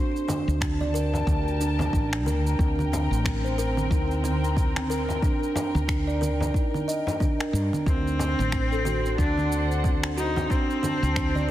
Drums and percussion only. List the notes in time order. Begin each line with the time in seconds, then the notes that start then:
0.16 shaker
0.28 low conga, frame drum, shaker
0.49 shaker
0.61 finger snap, kick, shaker
0.81 low conga, shaker
0.95 shaker
1.14 frame drum, shaker
1.27 kick, low conga, shaker
1.48 shaker
1.61 shaker
1.79 frame drum, low conga, shaker
1.93 kick, shaker
2.13 finger snap, shaker
2.27 low conga, shaker
2.47 shaker
2.59 kick, shaker
2.79 low conga, shaker
2.93 frame drum, shaker
3.13 shaker
3.25 finger snap, kick, low conga, shaker
3.46 shaker
3.59 shaker
3.77 low conga, shaker
3.91 kick, shaker
4.11 shaker
4.24 low conga, shaker
4.44 shaker
4.57 kick, shaker
4.76 finger snap, low conga, shaker
4.91 shaker
5.09 frame drum, shaker
5.22 kick, low conga, shaker
5.43 shaker
5.56 frame drum, shaker
5.75 low conga, shaker
5.88 finger snap, kick, shaker
6.09 shaker
6.22 low conga, shaker
6.40 frame drum, shaker
6.54 kick, shaker
6.74 low conga, shaker
6.89 shaker
7.07 frame drum, shaker
7.20 kick, low conga, shaker
7.40 finger snap, shaker
7.55 shaker
7.73 low conga, shaker
7.86 kick, low conga, shaker
8.07 shaker
8.19 frame drum, shaker
8.39 low conga, shaker
8.52 finger snap, kick, shaker
8.72 shaker
8.85 low conga, shaker
9.06 shaker
9.18 kick, shaker
9.38 low conga, shaker
9.52 shaker
9.72 shaker
9.84 kick, low conga, shaker
10.03 finger snap, shaker
10.18 shaker
10.36 low conga, frame drum, shaker
10.50 kick, shaker
10.70 shaker
10.83 low conga, frame drum, shaker
11.04 shaker
11.16 finger snap, kick, shaker
11.35 low conga, shaker